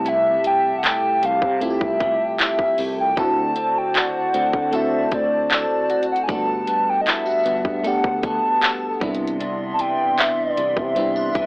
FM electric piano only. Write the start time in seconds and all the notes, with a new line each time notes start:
Already playing: A3 C4 E4 G4
1.60 A3 C4 E4 F4
1.70 G4
3.16 A3 C4 E4 F#4
4.71 A3 C4 E4 F#4
6.28 A3 A#3 D4 F#4
6.35 B3
7.83 A3 B3 D4 G4
9.00 G3 B3 D4 E4
10.95 G3 B3 D4 E4